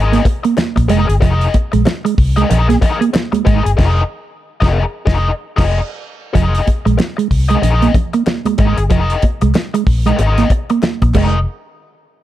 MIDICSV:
0, 0, Header, 1, 7, 480
1, 0, Start_track
1, 0, Key_signature, -4, "minor"
1, 0, Tempo, 640342
1, 918, Time_signature, 4, 2, 24, 8
1, 9169, End_track
2, 0, Start_track
2, 0, Title_t, "Overdriven electric guitar"
2, 0, Program_c, 0, 29
2, 0, Note_on_c, 0, 68, 89
2, 0, Note_on_c, 0, 70, 83
2, 0, Note_on_c, 0, 75, 74
2, 175, Note_off_c, 0, 68, 0
2, 177, Note_off_c, 0, 70, 0
2, 179, Note_off_c, 0, 75, 0
2, 662, Note_on_c, 0, 68, 81
2, 671, Note_on_c, 0, 70, 89
2, 676, Note_on_c, 0, 75, 107
2, 799, Note_off_c, 0, 75, 0
2, 805, Note_off_c, 0, 70, 0
2, 849, Note_off_c, 0, 68, 0
2, 904, Note_on_c, 0, 68, 90
2, 907, Note_on_c, 0, 70, 107
2, 912, Note_on_c, 0, 75, 119
2, 1136, Note_off_c, 0, 68, 0
2, 1137, Note_off_c, 0, 70, 0
2, 1140, Note_off_c, 0, 75, 0
2, 1772, Note_on_c, 0, 75, 93
2, 1777, Note_on_c, 0, 70, 85
2, 1781, Note_on_c, 0, 68, 72
2, 1857, Note_off_c, 0, 68, 0
2, 1862, Note_off_c, 0, 70, 0
2, 1866, Note_off_c, 0, 75, 0
2, 1866, Note_on_c, 0, 68, 79
2, 1871, Note_on_c, 0, 70, 89
2, 1875, Note_on_c, 0, 75, 89
2, 2007, Note_off_c, 0, 75, 0
2, 2014, Note_off_c, 0, 70, 0
2, 2052, Note_off_c, 0, 68, 0
2, 2110, Note_on_c, 0, 68, 62
2, 2113, Note_on_c, 0, 70, 67
2, 2116, Note_on_c, 0, 75, 77
2, 2238, Note_off_c, 0, 75, 0
2, 2245, Note_off_c, 0, 70, 0
2, 2265, Note_off_c, 0, 68, 0
2, 2585, Note_on_c, 0, 68, 80
2, 2589, Note_on_c, 0, 70, 82
2, 2595, Note_on_c, 0, 75, 103
2, 2720, Note_off_c, 0, 75, 0
2, 2730, Note_off_c, 0, 70, 0
2, 2771, Note_off_c, 0, 68, 0
2, 2824, Note_on_c, 0, 68, 118
2, 2830, Note_on_c, 0, 70, 118
2, 2832, Note_on_c, 0, 75, 109
2, 3002, Note_off_c, 0, 68, 0
2, 3005, Note_off_c, 0, 70, 0
2, 3007, Note_off_c, 0, 75, 0
2, 3451, Note_on_c, 0, 75, 95
2, 3458, Note_on_c, 0, 70, 106
2, 3459, Note_on_c, 0, 68, 102
2, 3611, Note_off_c, 0, 75, 0
2, 3615, Note_off_c, 0, 70, 0
2, 3616, Note_off_c, 0, 68, 0
2, 3790, Note_on_c, 0, 68, 88
2, 3797, Note_on_c, 0, 70, 84
2, 3800, Note_on_c, 0, 75, 95
2, 3965, Note_off_c, 0, 68, 0
2, 3969, Note_off_c, 0, 70, 0
2, 3971, Note_off_c, 0, 75, 0
2, 4170, Note_on_c, 0, 68, 107
2, 4176, Note_on_c, 0, 70, 104
2, 4179, Note_on_c, 0, 75, 110
2, 4331, Note_off_c, 0, 68, 0
2, 4334, Note_off_c, 0, 70, 0
2, 4336, Note_off_c, 0, 75, 0
2, 4748, Note_on_c, 0, 68, 104
2, 4752, Note_on_c, 0, 70, 94
2, 4758, Note_on_c, 0, 75, 111
2, 4978, Note_off_c, 0, 68, 0
2, 4980, Note_off_c, 0, 70, 0
2, 4983, Note_off_c, 0, 75, 0
2, 5611, Note_on_c, 0, 75, 70
2, 5618, Note_on_c, 0, 70, 71
2, 5623, Note_on_c, 0, 68, 69
2, 5698, Note_off_c, 0, 68, 0
2, 5702, Note_off_c, 0, 70, 0
2, 5707, Note_on_c, 0, 68, 84
2, 5708, Note_off_c, 0, 75, 0
2, 5711, Note_on_c, 0, 70, 77
2, 5717, Note_on_c, 0, 75, 84
2, 5937, Note_off_c, 0, 68, 0
2, 5939, Note_off_c, 0, 70, 0
2, 5942, Note_off_c, 0, 75, 0
2, 6434, Note_on_c, 0, 68, 75
2, 6440, Note_on_c, 0, 70, 79
2, 6445, Note_on_c, 0, 75, 87
2, 6573, Note_off_c, 0, 75, 0
2, 6582, Note_off_c, 0, 70, 0
2, 6615, Note_off_c, 0, 68, 0
2, 6669, Note_on_c, 0, 68, 96
2, 6678, Note_on_c, 0, 70, 110
2, 6684, Note_on_c, 0, 75, 106
2, 6898, Note_off_c, 0, 68, 0
2, 6902, Note_off_c, 0, 70, 0
2, 6905, Note_off_c, 0, 75, 0
2, 7546, Note_on_c, 0, 75, 82
2, 7549, Note_on_c, 0, 70, 74
2, 7553, Note_on_c, 0, 68, 56
2, 7628, Note_off_c, 0, 68, 0
2, 7634, Note_off_c, 0, 70, 0
2, 7637, Note_on_c, 0, 68, 67
2, 7638, Note_off_c, 0, 75, 0
2, 7643, Note_on_c, 0, 70, 72
2, 7647, Note_on_c, 0, 75, 75
2, 7861, Note_off_c, 0, 68, 0
2, 7864, Note_off_c, 0, 70, 0
2, 7866, Note_off_c, 0, 75, 0
2, 8356, Note_on_c, 0, 68, 80
2, 8362, Note_on_c, 0, 70, 89
2, 8367, Note_on_c, 0, 75, 85
2, 8518, Note_off_c, 0, 68, 0
2, 8521, Note_off_c, 0, 70, 0
2, 8524, Note_off_c, 0, 75, 0
2, 9169, End_track
3, 0, Start_track
3, 0, Title_t, "Clean electric guitar"
3, 0, Program_c, 1, 27
3, 94, Note_on_c, 1, 58, 70
3, 163, Note_off_c, 1, 58, 0
3, 337, Note_on_c, 1, 58, 79
3, 405, Note_off_c, 1, 58, 0
3, 673, Note_on_c, 1, 56, 85
3, 775, Note_off_c, 1, 56, 0
3, 915, Note_on_c, 1, 53, 81
3, 1016, Note_off_c, 1, 53, 0
3, 1298, Note_on_c, 1, 56, 81
3, 1367, Note_off_c, 1, 56, 0
3, 1536, Note_on_c, 1, 56, 87
3, 1605, Note_off_c, 1, 56, 0
3, 1779, Note_on_c, 1, 56, 81
3, 1847, Note_off_c, 1, 56, 0
3, 2016, Note_on_c, 1, 58, 88
3, 2085, Note_off_c, 1, 58, 0
3, 2256, Note_on_c, 1, 58, 83
3, 2325, Note_off_c, 1, 58, 0
3, 2497, Note_on_c, 1, 56, 67
3, 2566, Note_off_c, 1, 56, 0
3, 2594, Note_on_c, 1, 56, 79
3, 2696, Note_off_c, 1, 56, 0
3, 4757, Note_on_c, 1, 53, 89
3, 4858, Note_off_c, 1, 53, 0
3, 5142, Note_on_c, 1, 56, 80
3, 5209, Note_off_c, 1, 56, 0
3, 5384, Note_on_c, 1, 56, 93
3, 5451, Note_off_c, 1, 56, 0
3, 5625, Note_on_c, 1, 56, 67
3, 5691, Note_off_c, 1, 56, 0
3, 5864, Note_on_c, 1, 58, 82
3, 5931, Note_off_c, 1, 58, 0
3, 6103, Note_on_c, 1, 58, 82
3, 6169, Note_off_c, 1, 58, 0
3, 6342, Note_on_c, 1, 56, 76
3, 6409, Note_off_c, 1, 56, 0
3, 6438, Note_on_c, 1, 56, 81
3, 6538, Note_off_c, 1, 56, 0
3, 6673, Note_on_c, 1, 53, 79
3, 6775, Note_off_c, 1, 53, 0
3, 7062, Note_on_c, 1, 56, 78
3, 7128, Note_off_c, 1, 56, 0
3, 7301, Note_on_c, 1, 56, 85
3, 7367, Note_off_c, 1, 56, 0
3, 7540, Note_on_c, 1, 56, 84
3, 7607, Note_off_c, 1, 56, 0
3, 7783, Note_on_c, 1, 58, 69
3, 7848, Note_off_c, 1, 58, 0
3, 8023, Note_on_c, 1, 58, 78
3, 8089, Note_off_c, 1, 58, 0
3, 8356, Note_on_c, 1, 56, 72
3, 8499, Note_off_c, 1, 56, 0
3, 9169, End_track
4, 0, Start_track
4, 0, Title_t, "Fingered electric bass"
4, 0, Program_c, 2, 33
4, 0, Note_on_c, 2, 32, 104
4, 132, Note_off_c, 2, 32, 0
4, 579, Note_on_c, 2, 34, 94
4, 652, Note_off_c, 2, 34, 0
4, 669, Note_on_c, 2, 29, 84
4, 781, Note_off_c, 2, 29, 0
4, 817, Note_on_c, 2, 31, 91
4, 891, Note_off_c, 2, 31, 0
4, 915, Note_on_c, 2, 29, 119
4, 1097, Note_off_c, 2, 29, 0
4, 1300, Note_on_c, 2, 34, 98
4, 1373, Note_off_c, 2, 34, 0
4, 1637, Note_on_c, 2, 36, 75
4, 1818, Note_off_c, 2, 36, 0
4, 1877, Note_on_c, 2, 34, 108
4, 2058, Note_off_c, 2, 34, 0
4, 2600, Note_on_c, 2, 32, 90
4, 2709, Note_off_c, 2, 32, 0
4, 2741, Note_on_c, 2, 31, 86
4, 2832, Note_off_c, 2, 31, 0
4, 2837, Note_on_c, 2, 29, 125
4, 3009, Note_off_c, 2, 29, 0
4, 3464, Note_on_c, 2, 29, 101
4, 3619, Note_off_c, 2, 29, 0
4, 3801, Note_on_c, 2, 29, 100
4, 3972, Note_off_c, 2, 29, 0
4, 4185, Note_on_c, 2, 29, 94
4, 4340, Note_off_c, 2, 29, 0
4, 4761, Note_on_c, 2, 29, 114
4, 4941, Note_off_c, 2, 29, 0
4, 5143, Note_on_c, 2, 34, 87
4, 5215, Note_off_c, 2, 34, 0
4, 5477, Note_on_c, 2, 36, 77
4, 5659, Note_off_c, 2, 36, 0
4, 5714, Note_on_c, 2, 34, 102
4, 5896, Note_off_c, 2, 34, 0
4, 6437, Note_on_c, 2, 32, 89
4, 6546, Note_off_c, 2, 32, 0
4, 6580, Note_on_c, 2, 31, 80
4, 6676, Note_off_c, 2, 31, 0
4, 6676, Note_on_c, 2, 29, 115
4, 6857, Note_off_c, 2, 29, 0
4, 7062, Note_on_c, 2, 36, 87
4, 7134, Note_off_c, 2, 36, 0
4, 7396, Note_on_c, 2, 34, 94
4, 7577, Note_off_c, 2, 34, 0
4, 7637, Note_on_c, 2, 32, 94
4, 7817, Note_off_c, 2, 32, 0
4, 8261, Note_on_c, 2, 34, 78
4, 8333, Note_off_c, 2, 34, 0
4, 8353, Note_on_c, 2, 29, 86
4, 8577, Note_off_c, 2, 29, 0
4, 9169, End_track
5, 0, Start_track
5, 0, Title_t, "Muted clean electric guitar strokes"
5, 190, Note_on_c, 9, 29, 49
5, 265, Note_off_c, 9, 29, 0
5, 1157, Note_on_c, 9, 29, 48
5, 1232, Note_off_c, 9, 29, 0
5, 1633, Note_on_c, 9, 29, 46
5, 1708, Note_off_c, 9, 29, 0
5, 2115, Note_on_c, 9, 29, 47
5, 2190, Note_off_c, 9, 29, 0
5, 2350, Note_on_c, 9, 29, 48
5, 2425, Note_off_c, 9, 29, 0
5, 4998, Note_on_c, 9, 29, 45
5, 5073, Note_off_c, 9, 29, 0
5, 5481, Note_on_c, 9, 29, 44
5, 5556, Note_off_c, 9, 29, 0
5, 5960, Note_on_c, 9, 29, 47
5, 6035, Note_off_c, 9, 29, 0
5, 6195, Note_on_c, 9, 29, 43
5, 6270, Note_off_c, 9, 29, 0
5, 6919, Note_on_c, 9, 29, 44
5, 6994, Note_off_c, 9, 29, 0
5, 7399, Note_on_c, 9, 29, 42
5, 7474, Note_off_c, 9, 29, 0
5, 7880, Note_on_c, 9, 29, 44
5, 7955, Note_off_c, 9, 29, 0
5, 9169, End_track
6, 0, Start_track
6, 0, Title_t, "Muted overdriven electric guitar strokes"
6, 190, Note_on_c, 9, 29, 44
6, 265, Note_off_c, 9, 29, 0
6, 326, Note_on_c, 9, 29, 40
6, 401, Note_off_c, 9, 29, 0
6, 426, Note_on_c, 9, 29, 46
6, 501, Note_off_c, 9, 29, 0
6, 570, Note_on_c, 9, 29, 46
6, 645, Note_off_c, 9, 29, 0
6, 808, Note_on_c, 9, 29, 50
6, 883, Note_off_c, 9, 29, 0
6, 1287, Note_on_c, 9, 29, 47
6, 1362, Note_off_c, 9, 29, 0
6, 1390, Note_on_c, 9, 29, 32
6, 1465, Note_off_c, 9, 29, 0
6, 1535, Note_on_c, 9, 29, 42
6, 1610, Note_off_c, 9, 29, 0
6, 2016, Note_on_c, 9, 29, 43
6, 2091, Note_off_c, 9, 29, 0
6, 2247, Note_on_c, 9, 29, 46
6, 2322, Note_off_c, 9, 29, 0
6, 2348, Note_on_c, 9, 29, 52
6, 2423, Note_off_c, 9, 29, 0
6, 2489, Note_on_c, 9, 29, 49
6, 2564, Note_off_c, 9, 29, 0
6, 2729, Note_on_c, 9, 29, 43
6, 2804, Note_off_c, 9, 29, 0
6, 5138, Note_on_c, 9, 29, 48
6, 5213, Note_off_c, 9, 29, 0
6, 5229, Note_on_c, 9, 29, 37
6, 5303, Note_off_c, 9, 29, 0
6, 5373, Note_on_c, 9, 29, 43
6, 5448, Note_off_c, 9, 29, 0
6, 5951, Note_on_c, 9, 29, 46
6, 6026, Note_off_c, 9, 29, 0
6, 6097, Note_on_c, 9, 29, 44
6, 6172, Note_off_c, 9, 29, 0
6, 6197, Note_on_c, 9, 29, 39
6, 6272, Note_off_c, 9, 29, 0
6, 6343, Note_on_c, 9, 29, 41
6, 6417, Note_off_c, 9, 29, 0
6, 6582, Note_on_c, 9, 29, 41
6, 6657, Note_off_c, 9, 29, 0
6, 7058, Note_on_c, 9, 29, 40
6, 7133, Note_off_c, 9, 29, 0
6, 7159, Note_on_c, 9, 29, 40
6, 7234, Note_off_c, 9, 29, 0
6, 7301, Note_on_c, 9, 29, 44
6, 7376, Note_off_c, 9, 29, 0
6, 7875, Note_on_c, 9, 29, 34
6, 7950, Note_off_c, 9, 29, 0
6, 8020, Note_on_c, 9, 29, 47
6, 8095, Note_off_c, 9, 29, 0
6, 8115, Note_on_c, 9, 29, 41
6, 8190, Note_off_c, 9, 29, 0
6, 8262, Note_on_c, 9, 29, 44
6, 8337, Note_off_c, 9, 29, 0
6, 9169, End_track
7, 0, Start_track
7, 0, Title_t, "Drums"
7, 99, Note_on_c, 9, 42, 63
7, 104, Note_on_c, 9, 38, 42
7, 174, Note_off_c, 9, 42, 0
7, 179, Note_off_c, 9, 38, 0
7, 190, Note_on_c, 9, 36, 105
7, 192, Note_on_c, 9, 42, 95
7, 196, Note_on_c, 9, 62, 58
7, 265, Note_off_c, 9, 36, 0
7, 267, Note_off_c, 9, 42, 0
7, 271, Note_off_c, 9, 62, 0
7, 334, Note_on_c, 9, 42, 48
7, 409, Note_off_c, 9, 42, 0
7, 432, Note_on_c, 9, 39, 90
7, 433, Note_on_c, 9, 63, 83
7, 437, Note_on_c, 9, 38, 97
7, 507, Note_off_c, 9, 39, 0
7, 508, Note_off_c, 9, 63, 0
7, 512, Note_off_c, 9, 38, 0
7, 568, Note_on_c, 9, 63, 85
7, 580, Note_on_c, 9, 42, 56
7, 581, Note_on_c, 9, 36, 83
7, 643, Note_off_c, 9, 63, 0
7, 655, Note_off_c, 9, 42, 0
7, 656, Note_off_c, 9, 36, 0
7, 671, Note_on_c, 9, 42, 90
7, 746, Note_off_c, 9, 42, 0
7, 821, Note_on_c, 9, 42, 61
7, 896, Note_off_c, 9, 42, 0
7, 915, Note_on_c, 9, 36, 111
7, 917, Note_on_c, 9, 42, 106
7, 990, Note_off_c, 9, 36, 0
7, 992, Note_off_c, 9, 42, 0
7, 1059, Note_on_c, 9, 42, 56
7, 1134, Note_off_c, 9, 42, 0
7, 1155, Note_on_c, 9, 42, 75
7, 1156, Note_on_c, 9, 62, 62
7, 1158, Note_on_c, 9, 36, 86
7, 1230, Note_off_c, 9, 42, 0
7, 1231, Note_off_c, 9, 62, 0
7, 1233, Note_off_c, 9, 36, 0
7, 1298, Note_on_c, 9, 42, 50
7, 1373, Note_off_c, 9, 42, 0
7, 1395, Note_on_c, 9, 39, 93
7, 1398, Note_on_c, 9, 63, 91
7, 1403, Note_on_c, 9, 38, 117
7, 1470, Note_off_c, 9, 39, 0
7, 1473, Note_off_c, 9, 63, 0
7, 1478, Note_off_c, 9, 38, 0
7, 1544, Note_on_c, 9, 42, 61
7, 1619, Note_off_c, 9, 42, 0
7, 1635, Note_on_c, 9, 36, 103
7, 1637, Note_on_c, 9, 46, 78
7, 1710, Note_off_c, 9, 36, 0
7, 1712, Note_off_c, 9, 46, 0
7, 1785, Note_on_c, 9, 42, 57
7, 1860, Note_off_c, 9, 42, 0
7, 1879, Note_on_c, 9, 42, 108
7, 1880, Note_on_c, 9, 64, 97
7, 1954, Note_off_c, 9, 42, 0
7, 1955, Note_off_c, 9, 64, 0
7, 2023, Note_on_c, 9, 42, 59
7, 2028, Note_on_c, 9, 38, 41
7, 2098, Note_off_c, 9, 42, 0
7, 2103, Note_off_c, 9, 38, 0
7, 2113, Note_on_c, 9, 62, 51
7, 2113, Note_on_c, 9, 64, 75
7, 2114, Note_on_c, 9, 36, 102
7, 2119, Note_on_c, 9, 42, 104
7, 2188, Note_off_c, 9, 62, 0
7, 2188, Note_off_c, 9, 64, 0
7, 2189, Note_off_c, 9, 36, 0
7, 2194, Note_off_c, 9, 42, 0
7, 2262, Note_on_c, 9, 42, 50
7, 2337, Note_off_c, 9, 42, 0
7, 2354, Note_on_c, 9, 63, 79
7, 2357, Note_on_c, 9, 39, 99
7, 2366, Note_on_c, 9, 38, 104
7, 2429, Note_off_c, 9, 63, 0
7, 2432, Note_off_c, 9, 39, 0
7, 2441, Note_off_c, 9, 38, 0
7, 2496, Note_on_c, 9, 63, 87
7, 2506, Note_on_c, 9, 42, 50
7, 2571, Note_off_c, 9, 63, 0
7, 2581, Note_off_c, 9, 42, 0
7, 2599, Note_on_c, 9, 42, 96
7, 2600, Note_on_c, 9, 36, 107
7, 2674, Note_off_c, 9, 42, 0
7, 2675, Note_off_c, 9, 36, 0
7, 2746, Note_on_c, 9, 42, 63
7, 2821, Note_off_c, 9, 42, 0
7, 2838, Note_on_c, 9, 36, 108
7, 2838, Note_on_c, 9, 49, 83
7, 2843, Note_on_c, 9, 38, 105
7, 2913, Note_off_c, 9, 36, 0
7, 2913, Note_off_c, 9, 49, 0
7, 2918, Note_off_c, 9, 38, 0
7, 3464, Note_on_c, 9, 36, 114
7, 3471, Note_on_c, 9, 38, 113
7, 3539, Note_off_c, 9, 36, 0
7, 3546, Note_off_c, 9, 38, 0
7, 3801, Note_on_c, 9, 36, 122
7, 3808, Note_on_c, 9, 38, 124
7, 3876, Note_off_c, 9, 36, 0
7, 3883, Note_off_c, 9, 38, 0
7, 4185, Note_on_c, 9, 36, 104
7, 4187, Note_on_c, 9, 49, 92
7, 4192, Note_on_c, 9, 38, 114
7, 4260, Note_off_c, 9, 36, 0
7, 4262, Note_off_c, 9, 49, 0
7, 4267, Note_off_c, 9, 38, 0
7, 4761, Note_on_c, 9, 36, 113
7, 4763, Note_on_c, 9, 42, 101
7, 4836, Note_off_c, 9, 36, 0
7, 4838, Note_off_c, 9, 42, 0
7, 4908, Note_on_c, 9, 42, 60
7, 4983, Note_off_c, 9, 42, 0
7, 5003, Note_on_c, 9, 42, 76
7, 5003, Note_on_c, 9, 62, 63
7, 5005, Note_on_c, 9, 36, 86
7, 5078, Note_off_c, 9, 42, 0
7, 5078, Note_off_c, 9, 62, 0
7, 5080, Note_off_c, 9, 36, 0
7, 5147, Note_on_c, 9, 42, 48
7, 5222, Note_off_c, 9, 42, 0
7, 5242, Note_on_c, 9, 39, 96
7, 5245, Note_on_c, 9, 63, 88
7, 5248, Note_on_c, 9, 38, 104
7, 5317, Note_off_c, 9, 39, 0
7, 5320, Note_off_c, 9, 63, 0
7, 5323, Note_off_c, 9, 38, 0
7, 5390, Note_on_c, 9, 42, 59
7, 5465, Note_off_c, 9, 42, 0
7, 5479, Note_on_c, 9, 36, 89
7, 5482, Note_on_c, 9, 46, 82
7, 5554, Note_off_c, 9, 36, 0
7, 5556, Note_off_c, 9, 46, 0
7, 5625, Note_on_c, 9, 42, 56
7, 5700, Note_off_c, 9, 42, 0
7, 5722, Note_on_c, 9, 42, 100
7, 5724, Note_on_c, 9, 62, 41
7, 5724, Note_on_c, 9, 64, 83
7, 5797, Note_off_c, 9, 42, 0
7, 5799, Note_off_c, 9, 62, 0
7, 5799, Note_off_c, 9, 64, 0
7, 5863, Note_on_c, 9, 42, 56
7, 5938, Note_off_c, 9, 42, 0
7, 5955, Note_on_c, 9, 36, 112
7, 5957, Note_on_c, 9, 42, 98
7, 5962, Note_on_c, 9, 62, 52
7, 5962, Note_on_c, 9, 64, 73
7, 6030, Note_off_c, 9, 36, 0
7, 6032, Note_off_c, 9, 42, 0
7, 6037, Note_off_c, 9, 62, 0
7, 6037, Note_off_c, 9, 64, 0
7, 6097, Note_on_c, 9, 42, 44
7, 6172, Note_off_c, 9, 42, 0
7, 6196, Note_on_c, 9, 39, 90
7, 6199, Note_on_c, 9, 63, 73
7, 6202, Note_on_c, 9, 38, 113
7, 6271, Note_off_c, 9, 39, 0
7, 6274, Note_off_c, 9, 63, 0
7, 6277, Note_off_c, 9, 38, 0
7, 6337, Note_on_c, 9, 63, 87
7, 6339, Note_on_c, 9, 42, 49
7, 6412, Note_off_c, 9, 63, 0
7, 6414, Note_off_c, 9, 42, 0
7, 6431, Note_on_c, 9, 42, 82
7, 6437, Note_on_c, 9, 36, 99
7, 6506, Note_off_c, 9, 42, 0
7, 6512, Note_off_c, 9, 36, 0
7, 6577, Note_on_c, 9, 42, 60
7, 6652, Note_off_c, 9, 42, 0
7, 6675, Note_on_c, 9, 42, 96
7, 6676, Note_on_c, 9, 36, 107
7, 6750, Note_off_c, 9, 42, 0
7, 6751, Note_off_c, 9, 36, 0
7, 6821, Note_on_c, 9, 42, 55
7, 6896, Note_off_c, 9, 42, 0
7, 6914, Note_on_c, 9, 42, 80
7, 6920, Note_on_c, 9, 36, 86
7, 6923, Note_on_c, 9, 62, 60
7, 6989, Note_off_c, 9, 42, 0
7, 6995, Note_off_c, 9, 36, 0
7, 6998, Note_off_c, 9, 62, 0
7, 7056, Note_on_c, 9, 42, 48
7, 7131, Note_off_c, 9, 42, 0
7, 7156, Note_on_c, 9, 39, 92
7, 7162, Note_on_c, 9, 38, 108
7, 7164, Note_on_c, 9, 63, 92
7, 7231, Note_off_c, 9, 39, 0
7, 7237, Note_off_c, 9, 38, 0
7, 7239, Note_off_c, 9, 63, 0
7, 7305, Note_on_c, 9, 42, 61
7, 7380, Note_off_c, 9, 42, 0
7, 7396, Note_on_c, 9, 36, 96
7, 7400, Note_on_c, 9, 46, 80
7, 7471, Note_off_c, 9, 36, 0
7, 7475, Note_off_c, 9, 46, 0
7, 7544, Note_on_c, 9, 42, 44
7, 7619, Note_off_c, 9, 42, 0
7, 7636, Note_on_c, 9, 42, 92
7, 7643, Note_on_c, 9, 62, 41
7, 7711, Note_off_c, 9, 42, 0
7, 7718, Note_off_c, 9, 62, 0
7, 7779, Note_on_c, 9, 42, 56
7, 7783, Note_on_c, 9, 38, 39
7, 7854, Note_off_c, 9, 42, 0
7, 7858, Note_off_c, 9, 38, 0
7, 7872, Note_on_c, 9, 36, 106
7, 7873, Note_on_c, 9, 42, 96
7, 7878, Note_on_c, 9, 62, 49
7, 7947, Note_off_c, 9, 36, 0
7, 7948, Note_off_c, 9, 42, 0
7, 7953, Note_off_c, 9, 62, 0
7, 8018, Note_on_c, 9, 42, 44
7, 8093, Note_off_c, 9, 42, 0
7, 8115, Note_on_c, 9, 39, 85
7, 8118, Note_on_c, 9, 63, 78
7, 8121, Note_on_c, 9, 38, 108
7, 8190, Note_off_c, 9, 39, 0
7, 8193, Note_off_c, 9, 63, 0
7, 8196, Note_off_c, 9, 38, 0
7, 8258, Note_on_c, 9, 63, 82
7, 8260, Note_on_c, 9, 42, 55
7, 8261, Note_on_c, 9, 36, 78
7, 8333, Note_off_c, 9, 63, 0
7, 8334, Note_off_c, 9, 42, 0
7, 8336, Note_off_c, 9, 36, 0
7, 8353, Note_on_c, 9, 39, 90
7, 8355, Note_on_c, 9, 36, 112
7, 8355, Note_on_c, 9, 49, 96
7, 8358, Note_on_c, 9, 62, 87
7, 8428, Note_off_c, 9, 39, 0
7, 8430, Note_off_c, 9, 36, 0
7, 8430, Note_off_c, 9, 49, 0
7, 8433, Note_off_c, 9, 62, 0
7, 9169, End_track
0, 0, End_of_file